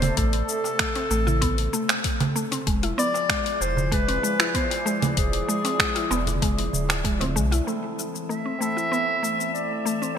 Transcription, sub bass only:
Already playing: E1
0.17 A1
1.11 A1
2.67 E1
3.61 E1
5.17 E1
6.11 E1
6.73 D1
7.36 B1

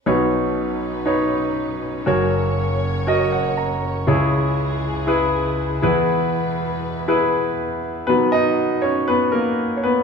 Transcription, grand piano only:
0.06 B1 B2 D#4 B4 C#5
1.06 D#4 B4 C#5
2.06 F#1 F#2 F#4 A#4 C#5
3.07 F#4 A#4 D#5
3.32 F#5
3.57 A#5
4.07 C#2 C#3 E4 G#4 C#5
5.07 E4 G#4 B4
5.82 E2 E3 E4 G#4 B4
7.08 E4 G#4 B4
8.07 B2 D#3 F#3 B3 B4
8.32 D#4 D#5
8.82 C#4 C#5
9.08 B3 B4
9.32 A#3 A#4
9.77 C#5
9.84 B3 B4

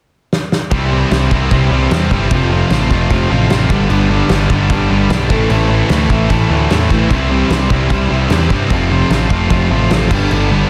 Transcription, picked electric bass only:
0.71 C2
1.11 C2
1.31 C2
1.51 C2
1.71 C2
1.91 E2
2.11 G1
2.31 F1
2.70 A1
2.91 F1
3.11 F1
3.30 A1
3.51 A1
3.70 G1
3.90 G1
4.30 G1
4.50 G1
4.70 G1
4.90 G1
5.10 B1
5.30 A1
5.50 A1
5.90 D2
6.10 A1
6.30 A1
6.50 D2
6.71 E2
6.91 A1
7.10 C2
7.50 C2
7.70 C2
7.90 C2
8.11 C2
8.30 E2
8.50 G2
8.70 F1
9.10 A1
9.30 F1
9.51 F1
9.70 A1
9.90 A1
10.11 G1
10.31 G1

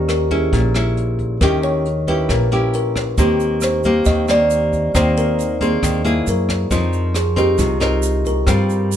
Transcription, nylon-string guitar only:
Already playing: D#3 C#4 G4
0.31 C#4 E4
0.53 A#2
0.75 C#4 E4
1.42 D#3 C#4 E4 G4
2.08 C#4 E4 G4
2.29 A#2
2.52 C#4 E4 G4
3.18 D#3 A#3 C4 G4
3.85 A#3 C4 G4
4.06 D#3
4.28 A#3 C4 G4
4.95 D#3 A#3 C4 G4
5.61 A#3 C4
5.83 D#3
6.05 A#3 E4 G#4
6.71 F3 C4 D#4 A#4
7.36 C4 D#4 A#4
7.58 C3
7.80 C4 D#4 A#4
8.47 G3 C4 F4 A#4

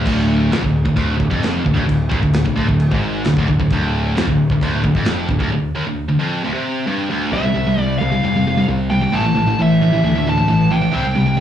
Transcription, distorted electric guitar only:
0.06 D2
0.52 F2
0.64 D2
0.85 D2
0.96 D2
1.17 D2
1.30 F2
1.65 D2
1.74 D2
1.86 D2
2.09 D#2
2.22 D2
2.45 D2
2.55 D2
2.68 D2
2.91 G#2
3.27 D2
3.38 D2
3.49 D2
3.60 D2
3.73 D2
4.16 F2
4.28 D2
4.52 D2
4.62 D2
4.84 D2
4.96 F2
5.31 D2
5.40 D2
5.52 D2
5.75 D#2
5.87 D2
6.09 D2
6.20 F2
6.44 D2
6.54 C3
6.87 G2
7.10 D2
7.33 C3 G3 C4
7.43 C3 G3
7.54 C3 G3
7.67 C3 G3
7.78 C3 G3
8.00 C3 G3
8.12 C3 G3
8.24 C3 G3
8.36 C3 G3
8.47 C3 G3
8.57 C3 G3
8.68 C3 G3
8.91 C3 G3
9.01 C3 G3
9.12 A2 E3 A3
9.23 A2 E3
9.35 A2 E3
9.47 A2 E3
9.59 A2 E3
9.82 A2 E3
9.93 A2 E3
10.04 A2 E3
10.15 A2 E3
10.27 A2 E3
10.38 A2 E3
10.48 A2 E3
10.70 A2 E3
10.81 A2 E3
10.91 C3 G3 C4
11.02 C3 G3
11.15 C3 G3
11.26 C3 G3
11.37 G3

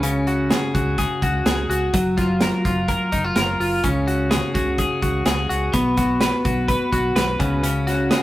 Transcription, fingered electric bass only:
Already playing: C#2
0.75 C#2
1.22 C#2
1.46 C#2
1.69 C#2
1.93 F#1
2.65 F#1
3.12 F#1
3.36 F#1
3.59 F#1
3.83 C#2
4.55 C#2
5.02 C#2
5.26 C#2
5.50 C#2
5.73 B1
6.45 B1
6.93 B1
7.15 B1
7.40 C#2

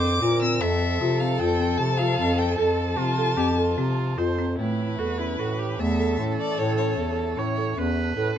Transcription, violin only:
Already playing: D6
0.42 E6
0.61 E5
1.20 F5
1.40 G5
1.78 A5
1.98 F5
2.38 G5
2.59 A5
4.59 B4
5.80 E5
6.40 D5
6.59 C#5
6.77 C#5

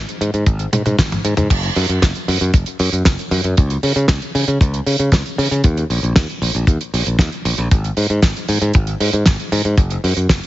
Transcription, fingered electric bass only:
0.21 G#2
0.34 G#2
0.46 G#1
0.73 G#2
0.86 G#2
0.99 G#1
1.25 G#2
1.37 G#2
1.50 F#1
1.76 F#2
1.89 F#2
2.03 F#1
2.28 F#2
2.41 F#2
2.54 F#1
2.80 F#2
2.93 F#2
3.06 F#1
3.31 F#2
3.44 F#2
3.58 C#2
3.83 C#3
3.96 C#3
4.08 C#2
4.35 C#3
4.48 C#3
4.61 C#2
4.86 C#3
4.99 C#3
5.12 C#2
5.38 C#3
5.51 C#3
5.64 D#2
5.90 A#1
6.03 A#1
6.16 D#2
6.42 A#1
6.55 A#1
6.67 D#2
6.94 A#1
7.07 A#1
7.19 D#2
7.45 A#1
7.58 A#1
7.71 G#1
7.97 G#2
8.10 G#2
8.23 G#1
8.49 G#2
8.62 G#2
8.75 G#1
9.00 G#2
9.13 G#2
9.27 G#1
9.52 G#2
9.65 G#2
9.78 F#1
10.04 F#2
10.17 F#2
10.29 F#1

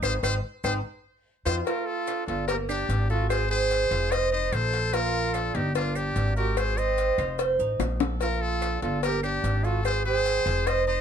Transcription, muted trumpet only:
0.04 C5
0.24 C5
0.64 C5
1.45 C5
1.66 A#4
1.86 A4
2.26 A4
2.47 A#4
2.68 G4
3.10 A4
3.30 C5
3.51 C5
4.11 D#5
4.32 D#5
4.53 C5
4.93 A#4
5.34 A4
5.55 G4
5.76 F4
5.96 G4
6.36 A#4
6.58 C5
6.77 D#5
8.21 A#4
8.41 A4
8.83 A4
9.03 A#4
9.23 G4
9.64 A4
9.86 C5
10.06 C5
10.67 D#5
10.88 D#5

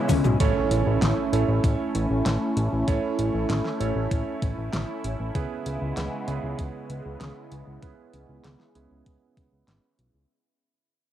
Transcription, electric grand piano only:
Already playing: B3 C#4 E4 G#4 B4
0.40 A3 C#4 E4 A4 C#5
1.33 A3 C#4 E4 A4 C#5
2.88 A3 C#4 E4 A4 C#5
3.80 A3 C#4 E4 A4 C#5
5.35 B3 C#4 E4 G#4 B4
6.28 B3 C#4 E4 G#4 B4
7.82 B3 C#4 E4 G#4 B4
8.75 B3 C#4 E4 G#4 B4

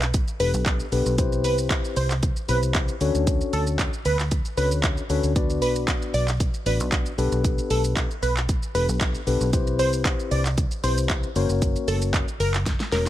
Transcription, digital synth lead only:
0.40 B4
1.44 B4
1.97 C5
2.49 B4
3.53 A4
4.06 B4
4.57 B4
5.62 B4
6.14 D5
6.66 B4
7.71 A4
8.23 B4
8.75 B4
9.79 C5
10.31 D5
10.84 C5
11.88 A4
12.40 A#4
12.92 A#4

